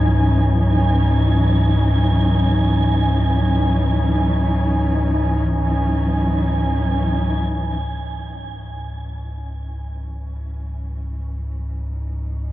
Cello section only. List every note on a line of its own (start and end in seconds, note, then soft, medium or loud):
0.00 7.86 E3 medium
0.00 7.88 F#3 medium
0.00 7.87 C#4 medium
0.00 7.88 D#4 medium
7.88 12.52 E3 medium
8.33 12.52 C#4 medium
9.56 12.52 F#3 medium
11.68 12.52 D#4 medium